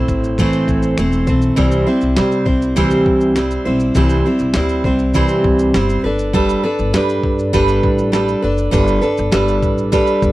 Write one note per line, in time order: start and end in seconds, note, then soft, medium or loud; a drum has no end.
0.00 0.38 A3 medium
0.00 0.40 C4 medium
0.00 0.40 E4 medium
0.00 0.40 C5 medium
0.08 0.45 A1 medium
0.08 kick medium
0.08 shaker soft
0.24 shaker soft
0.38 0.98 A2 medium
0.38 1.56 E3 medium
0.38 0.96 A3 medium
0.38 0.98 C4 medium
0.38 0.99 E4 medium
0.38 0.99 C5 loud
0.38 finger snap soft
0.38 kick medium
0.38 shaker medium
0.53 shaker medium
0.68 0.93 A1 medium
0.68 kick medium
0.68 shaker soft
0.83 shaker medium
0.98 1.22 E1 medium
0.98 1.27 A3 medium
0.98 1.27 C4 medium
0.98 1.27 E4 medium
0.98 1.26 C5 medium
0.98 finger snap medium
0.98 shaker medium
1.12 shaker medium
1.27 1.52 B1 medium
1.27 1.56 A3 soft
1.27 1.56 C4 soft
1.27 1.56 E4 soft
1.27 1.56 C5 medium
1.27 kick medium
1.27 shaker soft
1.42 shaker soft
1.56 1.82 C2 loud
1.56 1.87 C3 medium
1.56 1.87 E3 medium
1.56 1.87 G3 medium
1.56 1.86 C4 medium
1.56 1.86 E4 medium
1.56 1.85 C5 medium
1.56 kick loud
1.56 shaker medium
1.72 shaker medium
1.86 2.15 G3 soft
1.86 2.16 C4 soft
1.86 2.16 E4 medium
1.86 2.17 C5 medium
2.01 2.15 C2 medium
2.01 shaker soft
2.17 2.42 C3 medium
2.17 2.46 G3 medium
2.17 2.46 C4 medium
2.17 2.45 E4 medium
2.17 2.44 C5 medium
2.17 snare loud
2.17 shaker medium
2.32 shaker soft
2.45 2.71 C2 medium
2.45 2.75 G3 soft
2.45 2.76 C4 soft
2.45 2.76 E4 soft
2.45 2.76 C5 medium
2.45 kick medium
2.62 shaker soft
2.76 3.01 D2 medium
2.76 3.36 C3 medium
2.76 3.36 E3 medium
2.76 3.35 G3 medium
2.76 3.35 C4 loud
2.76 3.36 E4 medium
2.76 3.36 C5 medium
2.76 kick medium
2.76 shaker medium
2.91 shaker medium
3.06 3.55 C2 medium
3.06 kick medium
3.21 shaker soft
3.36 3.66 G3 medium
3.36 3.66 C4 medium
3.36 3.65 E4 medium
3.36 3.64 C5 medium
3.36 snare medium
3.36 shaker medium
3.51 shaker medium
3.65 3.91 B1 medium
3.65 3.95 G3 soft
3.65 3.96 C4 soft
3.65 3.95 E4 medium
3.65 3.95 C5 medium
3.80 shaker soft
3.95 4.20 C2 loud
3.95 4.26 C3 medium
3.95 4.26 E3 medium
3.95 4.26 G3 medium
3.95 4.26 C4 medium
3.95 4.25 E4 medium
3.95 4.24 C5 medium
3.95 kick loud
3.95 shaker medium
4.10 shaker medium
4.26 4.54 G3 soft
4.26 4.54 C4 soft
4.26 4.55 E4 medium
4.26 4.55 C5 medium
4.39 4.53 C2 medium
4.39 shaker soft
4.54 4.80 D2 medium
4.54 4.85 G3 medium
4.54 4.85 C4 medium
4.54 4.84 E4 medium
4.54 4.84 C5 medium
4.54 snare loud
4.54 shaker medium
4.69 shaker soft
4.84 5.21 C2 medium
4.84 5.14 G3 soft
4.84 5.14 C4 soft
4.84 5.15 E4 soft
4.84 5.15 C5 soft
4.84 kick medium
4.99 shaker soft
5.14 5.75 C3 medium
5.14 5.75 E3 medium
5.14 5.74 G3 medium
5.14 5.74 C4 loud
5.14 5.75 E4 medium
5.14 5.75 C5 medium
5.14 kick medium
5.14 shaker medium
5.28 shaker medium
5.44 5.69 C2 medium
5.44 kick medium
5.59 shaker medium
5.74 5.99 G1 loud
5.74 6.04 G3 medium
5.74 6.05 C4 medium
5.74 6.05 E4 medium
5.74 6.03 C5 medium
5.74 snare loud
5.74 shaker medium
5.89 shaker medium
6.04 6.53 G1 medium
6.04 6.33 D4 soft
6.04 6.33 A4 medium
6.04 6.34 B4 medium
6.19 shaker medium
6.33 6.64 G3 medium
6.33 6.64 D4 medium
6.33 6.63 A4 loud
6.33 6.62 B4 medium
6.33 kick loud
6.33 shaker medium
6.49 shaker medium
6.63 6.93 D4 soft
6.63 6.93 A4 medium
6.63 6.94 B4 medium
6.79 6.91 G1 medium
6.79 shaker soft
6.93 7.19 G2 medium
6.93 7.52 G3 medium
6.93 7.53 D4 medium
6.93 7.53 A4 medium
6.93 7.53 B4 medium
6.93 snare loud
6.93 shaker medium
7.09 shaker soft
7.24 7.48 G2 medium
7.24 kick medium
7.39 shaker soft
7.53 7.78 G1 medium
7.53 8.11 G3 loud
7.53 8.12 D4 medium
7.53 8.13 A4 medium
7.53 8.12 B4 medium
7.53 kick medium
7.53 shaker medium
7.68 shaker medium
7.83 8.33 A1 medium
7.83 kick loud
7.99 shaker medium
8.12 8.43 G3 medium
8.12 8.43 D4 medium
8.12 8.42 A4 medium
8.12 8.41 B4 medium
8.12 snare medium
8.12 shaker medium
8.29 shaker medium
8.42 8.68 F#1 medium
8.42 8.71 D4 soft
8.42 8.71 A4 soft
8.42 8.72 B4 medium
8.58 shaker soft
8.71 8.98 G1 loud
8.71 9.02 G3 medium
8.71 9.02 D4 medium
8.71 9.01 A4 medium
8.71 9.00 B4 loud
8.71 kick loud
8.71 shaker medium
8.88 shaker medium
9.01 9.31 D4 medium
9.01 9.32 A4 medium
9.01 9.32 B4 medium
9.01 shaker soft
9.18 9.31 G1 medium
9.18 shaker soft
9.32 9.58 G1 medium
9.32 9.91 G3 medium
9.32 9.92 D4 medium
9.32 9.92 A4 medium
9.32 9.92 B4 medium
9.32 snare loud
9.32 shaker medium
9.48 shaker medium
9.63 9.99 A1 medium
9.63 kick medium
9.63 shaker soft
9.78 shaker soft
9.92 10.32 G3 medium
9.92 10.32 D4 medium
9.92 10.32 A4 medium
9.92 10.32 B4 loud
9.92 kick loud
9.92 snare soft
9.92 shaker medium
10.07 shaker medium
10.22 10.32 G1 loud
10.22 kick medium
10.22 shaker soft